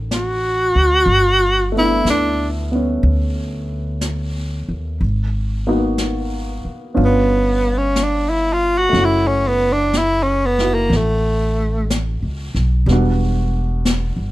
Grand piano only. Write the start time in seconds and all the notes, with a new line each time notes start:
Already playing: D#3 F#3 A3 C4
1.72 A3
1.76 B3 D4
1.84 E4
2.72 B3 C#4
5.67 A#3 B3 D#4 F#4
6.94 B3 C#4 D4 F4
8.89 A3 C#4
8.96 E4 F#4
10.61 E4 F#4
12.87 G3 B3 D4
12.92 F#4